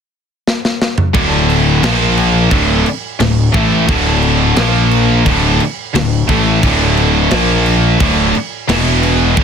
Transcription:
0.47 snare
0.65 snare
0.82 snare
0.98 mid tom
1.14 picked electric bass D1, distorted electric guitar D2 A2 D3, kick, crash
1.50 crash
1.83 picked electric bass A#1, distorted electric guitar A#2 F3 A#3, snare, crash
2.17 crash
2.51 picked electric bass D1, distorted electric guitar D2 A2 D3, kick, crash
2.86 crash
3.20 picked electric bass D1, distorted electric guitar D2 A2, snare, crash
3.54 picked electric bass A1, distorted electric guitar A2 E3 A3, kick, crash
3.88 picked electric bass D1, distorted electric guitar D2 A2 D3, kick, crash
4.22 crash
4.56 picked electric bass A#1, distorted electric guitar A#2 F3 A#3, snare, crash
4.91 crash
5.26 picked electric bass D1, distorted electric guitar D2 A2 D3, kick, crash
5.60 crash
5.94 picked electric bass D1, distorted electric guitar D2 A2, snare, crash
6.29 picked electric bass A1, distorted electric guitar A2 E3 A3, kick, crash
6.63 picked electric bass D1, distorted electric guitar D2 A2 D3, kick, crash
6.97 crash
7.31 picked electric bass A#1, distorted electric guitar A#2 F3 A#3, snare, crash
7.66 crash
8.00 picked electric bass D1, distorted electric guitar D2 A2 D3, kick, crash
8.35 crash
8.69 picked electric bass E1, distorted electric guitar E2 B2 E3, snare, crash
9.03 crash
9.37 picked electric bass D1, distorted electric guitar D2 A2 D3, kick, crash

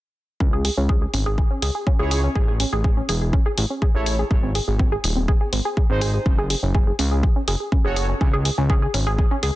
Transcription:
0.40 analog synth bass C#2, synth pluck C#4, kick
0.53 synth pluck G#4
0.65 synth pluck G#4, open hi-hat
0.77 analog synth bass C#2, synth pluck C#4
0.89 synth pluck G#4, kick
1.02 synth pluck G#4
1.14 analog synth bass G#1, synth pluck C#4, open hi-hat
1.26 synth pluck G#4
1.38 synth pluck G#4, kick
1.51 synth pluck C#4
1.62 analog synth bass C#2, synth pluck G#4, open hi-hat
1.75 synth pluck G#4
1.87 synth pluck C#4, kick
1.99 analog synth bass C#2, analog polysynth E4 G#4 C#5, synth pluck G#4
2.11 synth pluck G#4, open hi-hat
2.24 synth pluck C#4
2.36 analog synth bass A1, synth pluck G#4, kick
2.48 synth pluck G#4
2.60 synth pluck C#4, open hi-hat
2.73 analog synth bass A1, synth pluck G#4
2.84 synth pluck G#4, kick
2.97 synth pluck C#4
3.09 analog synth bass E1, synth pluck G#4, open hi-hat
3.21 synth pluck G#4
3.33 synth pluck C#4, kick
3.46 synth pluck G#4
3.58 analog synth bass A1, synth pluck G#4, open hi-hat
3.70 synth pluck C#4
3.82 synth pluck G#4, kick
3.95 analog synth bass A1, analog polysynth E4 A4 C#5, synth pluck G#4
4.06 synth pluck C#4, open hi-hat
4.19 synth pluck G#4
4.31 analog synth bass G#1, synth pluck G#4, kick
4.43 synth pluck C4
4.55 synth pluck G#4, open hi-hat
4.68 analog synth bass G#1, synth pluck G#4
4.79 synth pluck C4, kick
4.92 synth pluck G#4
5.04 analog synth bass D#1, synth pluck G#4, open hi-hat
5.17 synth pluck C4
5.28 synth pluck G#4, kick
5.41 synth pluck G#4
5.53 analog synth bass G#1, synth pluck C4, open hi-hat
5.65 synth pluck G#4
5.77 synth pluck G#4, kick
5.90 analog synth bass G#1, synth pluck C4, analog polysynth D#4 G#4 C5
6.01 synth pluck G#4, open hi-hat
6.14 synth pluck G#4
6.26 analog synth bass F#1, synth pluck C#4, kick
6.38 synth pluck G#4
6.50 synth pluck G#4, open hi-hat
6.63 analog synth bass F#1, synth pluck C#4
6.74 synth pluck G#4, kick
6.87 synth pluck G#4
6.99 analog synth bass C#2, synth pluck C#4, open hi-hat
7.12 synth pluck G#4
7.23 synth pluck G#4, kick
7.36 synth pluck C#4
7.48 analog synth bass F#1, synth pluck G#4, open hi-hat
7.60 synth pluck G#4
7.72 synth pluck C#4, kick
7.85 analog synth bass F#1, analog polysynth F#4 A4 C#5, synth pluck G#4
7.96 synth pluck G#4, open hi-hat
8.09 synth pluck C#4
8.21 analog synth bass C#2, synth pluck C#4, kick
8.33 synth pluck G#4
8.45 synth pluck G#4, open hi-hat
8.58 analog synth bass C#2, synth pluck C#4
8.70 synth pluck G#4, kick
8.82 synth pluck G#4
8.94 analog synth bass G#1, synth pluck C#4, open hi-hat
9.07 synth pluck G#4
9.18 synth pluck G#4, kick
9.31 synth pluck C#4
9.43 analog synth bass C#2, synth pluck G#4, open hi-hat

